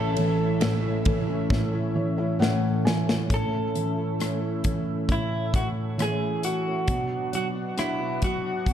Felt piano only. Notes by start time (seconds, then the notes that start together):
Already playing: A1 A2
0.17 E3
0.61 A2
1.06 E3
1.50 A2
1.96 E3 C#5
2.18 E5
2.39 A2 F#5
2.85 E3 G#5
3.30 A2
3.75 E3
4.19 C#4
4.64 E3
5.09 A2
5.98 E3
6.87 B2
7.33 F#3
7.77 D4
8.22 F#3
8.67 B2